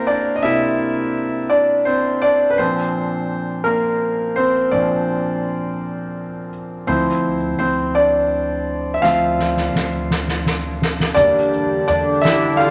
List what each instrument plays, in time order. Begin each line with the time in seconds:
Already playing: grand piano C3 A#3 C4 E4 A#4 C5 E5
0.07 grand piano D4 D5
0.36 grand piano D#5
0.43 grand piano C3 A#3 E4 E5
1.50 grand piano D4 D5
1.85 grand piano C4 C5
2.22 grand piano D4 D5
2.50 grand piano B4
2.58 grand piano A#2 F3 C4 D4 C5
3.64 grand piano A#3 A#4
4.36 grand piano C4 C5
4.71 grand piano A#2 F3 D4 D5
6.87 upright bass D2, grand piano F3 C4 E4 C5
7.59 upright bass D2, grand piano C4 C5
7.95 grand piano D4 D5
8.94 grand piano E5
9.02 upright bass D2, grand piano F3 C4 F4 E5 F5, snare
9.39 snare
9.57 snare
9.73 upright bass D2, snare
10.11 snare
10.28 snare
10.46 snare
10.82 snare
11.00 snare
11.15 upright bass E2, analog synth pad D3 D4 G4, grand piano G3 A#3 D4 D5, kick, closed hi-hat
11.54 closed hi-hat
11.88 upright bass E2, grand piano D4 D5, closed hi-hat
12.22 grand piano E4 E5, snare, closed hi-hat
12.57 grand piano F4 F5, closed hi-hat